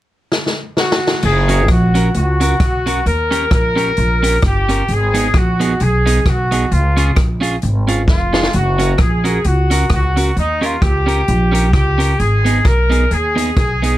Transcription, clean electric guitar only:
1.48 1.62 C#4 medium
1.48 1.62 F#4 medium
1.48 1.63 A#4 loud
1.69 muted clean electric guitar stroke soft
1.95 2.08 C#4 medium
1.95 2.08 F#4 medium
1.95 2.08 A#4 loud
2.40 2.53 C#4 medium
2.40 2.54 F#4 medium
2.40 2.54 A#4 medium
2.86 2.99 C#4 medium
2.86 2.99 F#4 medium
2.86 3.00 A#4 medium
3.31 3.44 C#4 medium
3.31 3.45 G4 medium
3.31 3.45 A#4 medium
3.50 muted clean electric guitar stroke soft
3.76 3.90 C#4 medium
3.76 3.90 G4 medium
3.76 3.90 A#4 medium
4.23 4.36 C#4 medium
4.23 4.36 G4 medium
4.23 4.36 A#4 loud
4.69 4.82 C#4 medium
4.69 4.82 G4 medium
4.69 4.82 A#4 medium
5.14 5.27 B3 medium
5.14 5.27 D#4 medium
5.14 5.28 G#4 loud
5.34 muted clean electric guitar stroke soft
5.60 5.73 B3 medium
5.60 5.73 D#4 medium
5.60 5.74 G#4 loud
6.06 6.19 B3 medium
6.06 6.19 D#4 medium
6.06 6.19 G#4 medium
6.51 6.64 B3 medium
6.51 6.65 D#4 medium
6.51 6.65 G#4 medium
6.97 7.10 C#4 medium
6.97 7.10 F4 medium
6.97 7.10 G#4 medium
7.15 muted clean electric guitar stroke soft
7.41 7.55 C#4 medium
7.41 7.55 F4 loud
7.41 7.56 G#4 medium
7.88 8.01 C#4 medium
7.88 8.01 F4 medium
7.88 8.02 G#4 medium
8.33 8.46 C#4 medium
8.33 8.47 F4 medium
8.33 8.47 G#4 medium
8.78 8.92 C#4 medium
8.78 8.93 F#4 medium
8.78 8.93 A#4 medium
8.97 muted clean electric guitar stroke soft
9.24 9.38 C#4 medium
9.24 9.38 F#4 medium
9.24 9.38 A#4 loud
9.45 muted clean electric guitar stroke soft
9.71 9.84 C#4 medium
9.71 9.84 F#4 loud
9.71 9.85 A#4 medium
10.16 10.30 C#4 medium
10.16 10.30 F#4 medium
10.16 10.30 A#4 medium
10.61 10.75 C#4 medium
10.61 10.75 G4 medium
10.61 10.76 A#4 medium
10.81 muted clean electric guitar stroke soft
11.06 11.20 C#4 medium
11.06 11.21 G4 medium
11.06 11.21 A#4 loud
11.52 11.66 C#4 medium
11.52 11.66 G4 medium
11.52 11.67 A#4 medium
11.98 12.12 C#4 medium
11.98 12.12 G4 medium
11.98 12.12 A#4 medium
12.45 12.58 B3 medium
12.45 12.59 D#4 medium
12.45 12.59 G#4 medium
12.65 muted clean electric guitar stroke soft
12.90 13.03 B3 medium
12.90 13.04 D#4 medium
12.90 13.04 G#4 medium
13.36 13.49 B3 medium
13.36 13.50 D#4 medium
13.36 13.50 G#4 loud
13.82 13.96 B3 medium
13.82 13.96 D#4 medium
13.82 13.96 G#4 medium

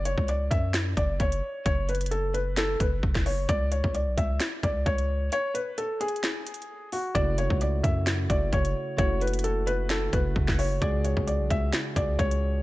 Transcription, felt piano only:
0.05 0.27 C#5 medium
0.29 0.50 D5 medium
0.51 0.72 E5 medium
0.97 1.18 D5 medium
1.21 1.63 C#5 medium
1.66 1.87 C#5 loud
1.89 2.10 B4 medium
2.11 2.33 A4 medium
2.34 2.55 B4 medium
2.58 2.79 A4 medium
2.81 3.23 B4 medium
3.26 3.47 C#5 medium
3.49 3.70 D5 loud
3.72 3.93 C#5 medium
3.95 4.16 D5 medium
4.18 4.39 E5 medium
4.64 4.85 D5 medium
4.86 5.29 C#5 medium
5.33 5.54 C#5 loud
5.55 5.76 B4 medium
5.78 5.99 A4 medium
6.01 6.88 G#4 medium
6.93 7.14 F#4 medium
7.15 7.36 D5 loud
7.38 7.60 C#5 medium
7.62 7.83 D5 medium
7.83 8.05 E5 medium
8.30 8.51 D5 medium
8.53 8.96 C#5 medium
8.98 9.20 C#5 loud
9.22 9.43 B4 medium
9.44 9.65 A4 medium
9.67 9.88 B4 medium
9.91 10.12 A4 medium
10.13 10.56 B4 medium
10.59 10.80 C#5 medium
10.82 11.03 D5 loud
11.05 11.26 C#5 medium
11.28 11.49 D5 medium
11.51 11.72 E5 medium
11.97 12.18 D5 medium
12.19 12.62 C#5 medium

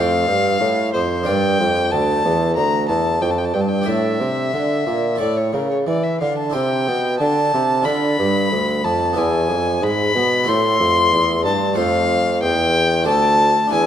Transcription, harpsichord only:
0.00 0.25 F2 medium
0.00 0.25 A3 medium
0.00 1.23 A4 medium
0.00 1.23 C5 medium
0.28 0.58 G2 medium
0.60 0.90 A2 medium
0.95 1.25 F2 medium
1.23 1.57 D4 medium
1.23 3.82 A#4 medium
1.23 3.83 D5 medium
1.28 1.57 G2 medium
1.61 1.90 F2 medium
1.93 2.22 D2 medium
2.26 2.54 E2 medium
2.57 2.86 D2 medium
2.89 3.18 E2 medium
3.21 3.51 F2 medium
3.54 3.84 G2 medium
3.82 5.14 D4 soft
3.82 5.14 A4 soft
3.82 5.15 D5 soft
3.86 4.17 A2 medium
4.21 4.51 C3 medium
4.53 4.84 D3 medium
4.87 5.17 A#2 medium
5.16 6.48 E4 soft
5.16 6.49 A4 soft
5.16 6.49 C#5 soft
5.20 5.50 A2 medium
5.53 5.83 C#3 medium
5.87 6.17 E3 soft
6.21 6.51 D3 medium
6.50 7.80 E4 soft
6.50 7.81 G4 medium
6.50 7.81 C5 soft
6.55 6.84 C3 medium
6.88 7.17 B2 medium
7.20 7.50 D3 medium
7.54 7.83 C3 medium
7.82 9.11 D4 medium
7.82 9.12 F4 medium
7.82 9.13 A4 medium
7.86 8.16 D3 medium
8.20 8.49 G2 medium
8.53 8.82 D2 medium
8.85 9.14 F2 medium
9.13 9.47 B3 medium
9.13 10.43 E4 medium
9.13 10.44 D5 medium
9.17 9.47 E2 medium
9.50 9.80 F2 medium
9.82 10.12 G#2 medium
10.16 10.45 B2 medium
10.44 11.72 A3 medium
10.44 11.73 E4 medium
10.44 11.73 C5 medium
10.48 10.77 A2 medium
10.80 11.10 F2 medium
11.13 11.42 E2 medium
11.44 11.74 G2 medium
11.73 12.38 A3 medium
11.73 13.01 F4 medium
11.73 13.02 C5 medium
11.78 12.38 F2 medium
12.42 13.03 E2 medium
13.02 13.68 A3 medium
13.02 13.69 F4 medium
13.02 13.70 D5 medium
13.07 13.68 D2 medium
13.67 13.87 D4 medium
13.67 13.87 E4 medium
13.67 13.87 B4 medium
13.72 13.87 E2 medium

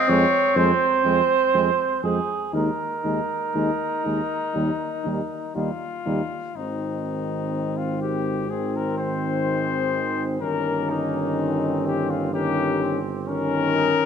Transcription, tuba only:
0.09 0.25 F2 medium
0.55 0.71 F2 medium
1.05 1.21 F2 medium
1.54 1.70 F2 medium
2.03 2.19 F2 medium
2.53 2.69 D#2 medium
3.04 3.20 D#2 medium
3.55 3.71 D#2 medium
4.05 4.21 D#2 medium
4.55 4.71 D#2 medium
5.05 5.21 D#2 medium
5.55 5.71 D#2 medium
6.06 6.22 D#2 medium
6.57 10.38 G#1 soft
10.41 13.91 G1 medium

